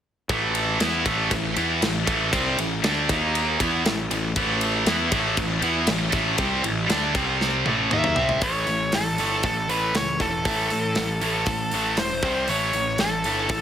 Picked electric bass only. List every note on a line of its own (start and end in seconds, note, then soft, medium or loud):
0.29 0.77 A1 medium
0.80 1.04 E2 medium
1.05 1.29 A1 medium
1.31 1.55 A1 medium
1.57 1.80 E2 medium
1.82 2.06 A1 medium
2.08 2.31 A1 loud
2.33 2.56 C2 loud
2.58 2.82 A1 medium
2.83 3.07 D2 loud
3.09 3.56 D#2 loud
3.60 3.84 E2 medium
3.86 4.09 A1 medium
4.11 4.35 A1 medium
4.36 4.83 A1 loud
4.86 5.10 E2 medium
5.12 5.36 A1 medium
5.37 5.61 A1 medium
5.61 5.86 E2 medium
5.87 6.11 A1 medium
6.13 6.37 A1 medium
6.38 6.62 C2 loud
6.64 6.88 A1 medium
6.89 7.13 D2 medium
7.15 7.62 C2 medium
7.66 7.89 A1 medium
7.91 8.15 D#2 medium
8.16 8.40 C2 medium
8.41 8.65 A1 medium
8.67 8.91 A1 medium
8.93 9.16 A1 medium
9.18 9.41 G1 medium
9.43 9.67 A1 medium
9.69 9.92 A1 medium
9.94 10.18 C#2 medium
10.20 10.43 E1 medium
10.45 10.69 A1 medium
10.71 10.94 A2 medium
10.96 11.20 A1 medium
11.22 11.45 A1 medium
11.46 11.70 A1 medium
11.72 11.95 A1 medium
11.97 12.22 E1 medium
12.22 12.46 C2 medium
12.48 12.72 A1 medium
12.74 12.97 A1 medium
12.99 13.22 A1 medium
13.24 13.48 G1 medium
13.49 13.61 A1 medium